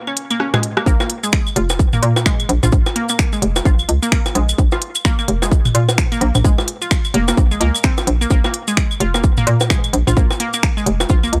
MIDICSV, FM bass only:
0, 0, Header, 1, 2, 480
1, 0, Start_track
1, 0, Key_signature, -5, "minor"
1, 0, Tempo, 465116
1, 892, Time_signature, 4, 2, 24, 8
1, 11765, End_track
2, 0, Start_track
2, 0, Title_t, "FM bass"
2, 0, Program_c, 0, 39
2, 892, Note_on_c, 0, 34, 97
2, 1001, Note_off_c, 0, 34, 0
2, 1612, Note_on_c, 0, 29, 99
2, 2055, Note_off_c, 0, 29, 0
2, 2091, Note_on_c, 0, 46, 89
2, 2535, Note_off_c, 0, 46, 0
2, 2571, Note_on_c, 0, 34, 102
2, 2681, Note_off_c, 0, 34, 0
2, 2714, Note_on_c, 0, 34, 90
2, 2789, Note_off_c, 0, 34, 0
2, 2812, Note_on_c, 0, 34, 97
2, 2921, Note_off_c, 0, 34, 0
2, 3531, Note_on_c, 0, 29, 94
2, 3726, Note_off_c, 0, 29, 0
2, 3771, Note_on_c, 0, 34, 99
2, 3966, Note_off_c, 0, 34, 0
2, 4012, Note_on_c, 0, 37, 93
2, 4121, Note_off_c, 0, 37, 0
2, 4491, Note_on_c, 0, 34, 93
2, 4686, Note_off_c, 0, 34, 0
2, 4732, Note_on_c, 0, 34, 98
2, 4841, Note_off_c, 0, 34, 0
2, 5452, Note_on_c, 0, 29, 96
2, 5895, Note_off_c, 0, 29, 0
2, 5930, Note_on_c, 0, 46, 89
2, 6375, Note_off_c, 0, 46, 0
2, 6410, Note_on_c, 0, 34, 99
2, 6521, Note_off_c, 0, 34, 0
2, 6553, Note_on_c, 0, 34, 90
2, 6628, Note_off_c, 0, 34, 0
2, 6652, Note_on_c, 0, 34, 102
2, 6761, Note_off_c, 0, 34, 0
2, 7371, Note_on_c, 0, 29, 98
2, 7566, Note_off_c, 0, 29, 0
2, 7612, Note_on_c, 0, 34, 95
2, 7807, Note_off_c, 0, 34, 0
2, 7850, Note_on_c, 0, 37, 92
2, 7960, Note_off_c, 0, 37, 0
2, 8331, Note_on_c, 0, 34, 96
2, 8526, Note_off_c, 0, 34, 0
2, 8572, Note_on_c, 0, 34, 99
2, 8681, Note_off_c, 0, 34, 0
2, 9291, Note_on_c, 0, 29, 93
2, 9735, Note_off_c, 0, 29, 0
2, 9771, Note_on_c, 0, 46, 94
2, 10215, Note_off_c, 0, 46, 0
2, 10250, Note_on_c, 0, 34, 100
2, 10360, Note_off_c, 0, 34, 0
2, 10393, Note_on_c, 0, 34, 90
2, 10469, Note_off_c, 0, 34, 0
2, 10492, Note_on_c, 0, 34, 98
2, 10601, Note_off_c, 0, 34, 0
2, 11211, Note_on_c, 0, 29, 98
2, 11406, Note_off_c, 0, 29, 0
2, 11451, Note_on_c, 0, 34, 96
2, 11646, Note_off_c, 0, 34, 0
2, 11690, Note_on_c, 0, 37, 92
2, 11765, Note_off_c, 0, 37, 0
2, 11765, End_track
0, 0, End_of_file